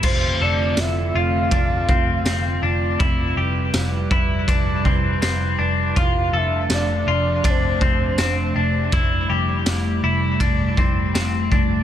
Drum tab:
CC |x-------|--------|--------|--------|
RD |--x-x-x-|x-x-x-x-|x-x-x-x-|x-x-x-x-|
TB |--x---x-|--x---x-|--x---x-|--x---x-|
SD |--o---o-|--o---o-|--o---o-|--o---o-|
BD |o---oo--|o--ooo--|o---oo--|o---oo-o|